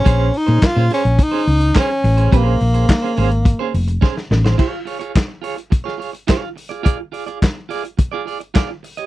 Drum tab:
CC |----------------|----------------|x---------------|----------------|
HH |x-oxx-oxx-oxx-ox|x-oxx-oxx-ox----|--oxx-oxx-oxx-ox|x-oxx-oxx-oxx-ox|
CP |----x-------x---|----x-----------|----x-------x---|----x-------x---|
SD |----o-------o---|----o-------oooo|----o----o--o---|----o-------o---|
BD |o---o---o---o---|o---o---o---o---|o---o---o---o---|o---o---o---o---|